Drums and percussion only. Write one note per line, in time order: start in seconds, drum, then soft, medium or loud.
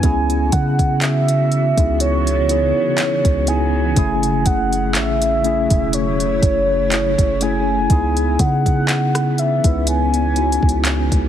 0.03 kick loud
0.03 closed hi-hat medium
0.30 closed hi-hat soft
0.52 kick loud
0.52 closed hi-hat medium
0.79 kick medium
0.79 closed hi-hat soft
1.02 clap loud
1.02 closed hi-hat medium
1.28 closed hi-hat medium
1.52 closed hi-hat soft
1.77 kick loud
1.77 closed hi-hat medium
2.00 closed hi-hat medium
2.27 closed hi-hat soft
2.49 closed hi-hat medium
2.98 clap loud
2.98 closed hi-hat medium
3.25 kick loud
3.25 closed hi-hat soft
3.47 closed hi-hat medium
3.96 kick loud
3.96 closed hi-hat medium
4.23 closed hi-hat medium
4.46 kick loud
4.46 closed hi-hat medium
4.73 closed hi-hat soft
4.95 clap loud
4.95 closed hi-hat medium
5.22 closed hi-hat medium
5.44 closed hi-hat soft
5.70 kick loud
5.70 closed hi-hat medium
5.93 closed hi-hat medium
6.20 closed hi-hat soft
6.42 kick loud
6.42 closed hi-hat medium
6.92 clap loud
6.92 closed hi-hat medium
7.18 kick medium
7.18 closed hi-hat medium
7.41 closed hi-hat medium
7.90 kick loud
7.90 closed hi-hat medium
8.17 closed hi-hat medium
8.39 kick loud
8.39 closed hi-hat medium
8.66 kick medium
8.66 closed hi-hat soft
8.89 clap loud
8.89 closed hi-hat medium
9.15 cross-stick loud
9.15 closed hi-hat medium
9.38 closed hi-hat soft
9.64 kick medium
9.64 closed hi-hat medium
9.87 closed hi-hat medium
10.14 closed hi-hat soft
10.36 closed hi-hat medium
10.52 closed hi-hat medium
10.63 kick medium
10.69 closed hi-hat soft
10.85 clap loud
10.85 closed hi-hat medium
11.12 kick medium
11.12 closed hi-hat medium